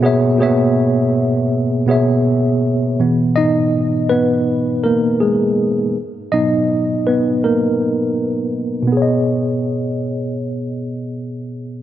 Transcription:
X:1
M:4/4
L:1/16
Q:"Swing 16ths" 1/4=81
K:B
V:1 name="Tine electric piano"
[B,,B,Gce]2 [B,,A,B,Gce]8 [B,,B,Gce]6 | z2 [Dd]4 [B,B]4 [A,A]2 [G,G]3 z | z2 [Dd]4 [B,B]2 [A,A]6 z2 | [B,,B,Gcd]16 |]
V:2 name="Tine electric piano" clef=bass
z16 | [B,,E,B,]2 z12 z2 | z2 [B,,F,B,]2 z12 | z16 |]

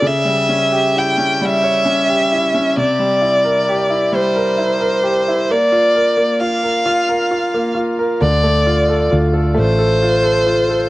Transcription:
X:1
M:6/8
L:1/16
Q:3/8=44
K:Dm
V:1 name="Violin"
e4 g2 e6 | d6 c6 | d4 f6 z2 | d4 z2 c6 |]
V:2 name="Grand piano"
^C, G, ^C G E C G, ^c C G E C | C, G, E B G E G, B E B G E | B, F B B, F B F B F B, F B | D, A, F A F A A, A F A F A |]
V:3 name="Fingered electric bass" clef=bass
z12 | z12 | z12 | D,,4 D,,2 A,,,6 |]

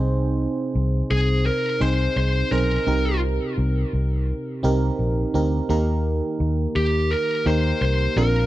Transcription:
X:1
M:4/4
L:1/16
Q:1/4=85
K:Eb
V:1 name="Lead electric guitar"
z6 A2 B2 c2 c2 B2- | B2 z12 z2 | z6 G2 B2 c2 c2 B2 |]
V:2 name="FM electric piano"
[C,CEAc]4 z6 [CEAc]2 z2 [CEAc]2 | [C,CEGB]6 z4 [CEGB]2 z2 [CEGB]2 | [E,B,EGB]6 z4 [B,EGB]2 z2 [B,,CDFB]2 |]
V:3 name="Fingered electric bass" clef=bass
C,,4 C,,2 C,,3 z C,,2 C,,2 _C,,2 | C,,4 C,,2 C,,3 z C,,2 B,,,2 D,,2 | E,,4 E,,2 E,,3 z E,,2 C,,2 B,,,2 |]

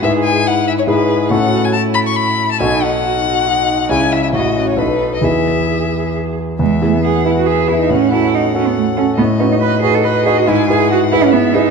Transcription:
X:1
M:3/4
L:1/16
Q:1/4=139
K:E
V:1 name="Violin"
e2 g2 f2 e c B4 | f3 g a2 b c' b3 a | g2 f8- f2 | g2 e e d3 c B3 d |
e8 z4 | e4 f4 e4 | f4 f8 | d8 d4 |
g4 f4 e4 |]
V:2 name="Cello"
G4 E4 G4 | F4 E8 | D4 F4 D4 | E4 F4 D4 |
G8- G2 z2 | G,2 A, B, G2 E F G2 E D | C2 E2 D2 C B, A,2 C2 | B,2 C D B2 G A B2 G F |
E2 G2 F2 E C B,2 D2 |]
V:3 name="Grand piano"
[G,,EGB]8 [G,,EGB]4 | [A,,CFA]12 | [B,,,DFA]12 | [C,,CEG]4 [A,,,CEF]4 [B,,,B,DA]4 |
[E,,B,EG]12 | E,,2 [B,EG]4 [B,EG]4 [B,EG]2 | A,,2 [CFA]4 [CFA]4 [CFA]2 | A,,2 [DFB]4 [DFB]4 [DFB]2 |
G,,2 [EGB]4 [EGB]4 [EGB]2 |]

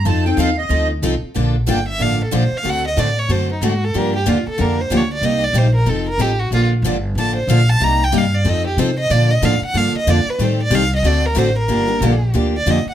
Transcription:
X:1
M:4/4
L:1/8
Q:"Swing" 1/4=186
K:Bb
V:1 name="Accordion"
a g f e2 z3 | z8 | z8 | z8 |
z8 | z8 | z8 | z8 |
z8 | z8 |]
V:2 name="Violin"
z8 | z2 g =e f A c f | ^f e d _d c E ^F A | B G F A B c _d =d |
e d c B A B G _G | F z3 a c f a | b g f d e G c e | d e f _g f e d _c |
c d f e d B c B- | B4 z d e _g |]
V:3 name="Steel-string acoustic guitar"
[F,CEA] [CEA] [F,CEA] z [F,CEA] z [F,CEA] z | [D,F,B,DA] z [D,F,B,DA] z [D,F,B,DA] z [D,F,B,DA] z | [D,A,C^FA] z [D,A,CFA] z [D,A,CFA] z [D,A,CFA] z | [D,F,B,DG] z [D,F,B,DG] z [D,F,B,DG] z [D,F,B,DG] z |
[C,G,B,EG] z [C,G,B,EG] z [F,CEA] z [F,CEA] z | [D,F,B,DA] z [D,F,B,DA] z [D,F,B,DA] z [D,F,B,DA] z | [C,G,B,EG] z [C,G,B,EG] z [F,CEA] z [F,CEA] z | [D,F,B,DA] z [D,F,B,DA] z [D,F,B,DA] z [D,F,B,DA] z |
[E,G,CGA] z [E,G,CGA] z [D,A,C^FA] z [D,A,CFA] z | [D,F,B,DG] [B,DG] [D,F,B,DG] z [D,F,B,DG] z [D,F,B,DG] z |]
V:4 name="Steel-string acoustic guitar"
[F,CEA] z [F,CEA] z [F,CEA] z [F,CEA] z | [D,F,B,DA] z [D,F,B,DA] z [D,F,B,DA] z [D,F,B,DA] z | [D,A,C^FA] z [D,A,CFA] z [D,A,CFA] z [D,A,CFA] z | [D,F,B,DG] z [D,F,B,DG] z [D,F,B,DG] z [D,F,B,DG] z |
[C,G,B,EG] z [C,G,B,EG] z [F,CEA] z [F,CEA] z | [D,F,B,DA] z [D,F,B,DA] z [D,F,B,DA] z [D,F,B,DA] z | [C,G,B,EG] z [C,G,B,EG] z [F,CEA] z [F,CEA] z | [D,F,B,DA] z [D,F,B,DA] z [D,F,B,DA] z [D,F,B,DA] z |
[E,G,CGA] z [E,G,CGA] z [D,A,C^FA] z [D,A,CFA] z | [D,F,B,DG] z [D,F,B,DG] z [D,F,B,DG] z [D,F,B,DG] z |]
V:5 name="Upright bass" clef=bass
F,,2 E,,2 D,,2 C,, z | B,,,2 G,,,2 A,,,2 B,,, z | D,,2 A,,2 ^F,,2 _A,,2 | G,,2 E,, z F,,2 D,,2 |
C,,2 B,,,2 F,,,2 A,,,2 | B,,,2 G,,,2 A,,,2 B,,,2 | C,,2 G,,2 F,,2 C,2 | B,,2 A,, z G,, z F,, z |
A,,2 C,,2 D,,2 A,,,2 | G,,,2 B,,,2 D,,2 F,, z |]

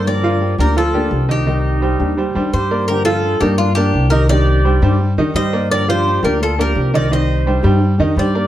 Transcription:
X:1
M:4/4
L:1/8
Q:1/4=170
K:Cdor
V:1 name="Cuban tres"
d3 B A3 G- | G6 c2 | B A2 G F G2 B | d4 z2 e2 |
d c2 B A B2 d | e4 z2 d2 |]
V:2 name="Flute"
B3 G F3 E- | E6 G2 | G F2 E D D2 G | G4 z2 c2 |
B G2 G F G2 B | c4 z2 G2 |]
V:3 name="Grand piano"
[B,Bd] [F,Ff]2 [B,Bd] [F,Ff] [B,Gd]2 [E,Ee] | [E,e]2 [G,Gc]2 [G,Gc] [G,Gc]2 [B,Bd] | z [F,Ff]2 [B,Bd]2 [B,Bd]2 [E,Ee] | [E,E]2 [G,Gc] [G,Gc]2 [E,Ee] [G,Gc] [B,Bd]- |
[B,Bd] [F,Ff]2 [B,Bd]2 [B,Bd]2 [E,Ee] | [E,e]2 [G,Gc] [G,Gc]2 [E,Ee] [G,Gc] [B,Bd] |]
V:4 name="Nylon-string guitar"
[D,F,B,DG]2 [F,B,DG] [F,B,DG] z [F,B,DG] [F,B,DG]2 | [C,E,G,G]2 [E,G,D] [E,G,DG] z [E,G,DG] [E,G,DG]2 | [D,F,B,DG]2 [F,B,DG] [F,B,DG] z [F,B,DG] [F,B,DG]2 | [C,E,G,DG]2 [E,G,DG] [E,G,DG] z [E,G,DG] [E,G,G]2 |
[D,F,B,DG]2 [F,B,DG] [F,B,DG] z [F,B,DG] [F,B,DG]2 | [C,E,G,G]2 [E,G,DG] [E,G,DG] z [E,G,DG] [E,G,DG]2 |]
V:5 name="Upright bass" clef=bass
G,,3 D,,3 C,,2- | C,,3 E,,2 F,, G,,2- | G,,3 G,,3 C,,2- | C,,3 G,,2 F,, G,,2- |
G,,3 D,,3 C,,2- | C,,3 G,,2 F,, G,,2 |]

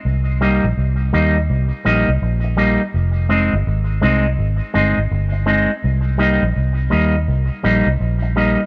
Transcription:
X:1
M:4/4
L:1/16
Q:"Swing 16ths" 1/4=83
K:Cm
V:1 name="Clean electric guitar"
z2 [G,B,E] z3 [G,B,E] z3 [G,B,E] z3 [G,B,E] z | z2 [A,CE] z3 [A,CE] z3 [A,CE] z3 [A,CE] z | z2 [G,B,E] z3 [G,B,E] z3 [G,B,E] z3 [G,B,E] z |]
V:2 name="Fingered electric bass" clef=bass
C,,3 B,,, C,,2 E,,2 C,, z B,,, C,, B,,,3 z | F,,,3 G,,, A,,,2 C,,2 A,,, z G,,, A,,, G,,,3 z | C,,3 B,,, C,,2 E,,2 C,, z B,,, C,, B,,,3 z |]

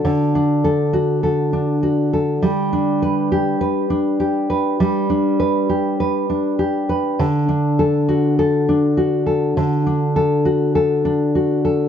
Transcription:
X:1
M:4/4
L:1/8
Q:"Swing 16ths" 1/4=101
K:D
V:1 name="Nylon-string guitar"
[D,DFA] D A F A D F A | G, D B G B D G B | G, D B G B D G B | D, D A F A D F A |
D, D A F A D F A |]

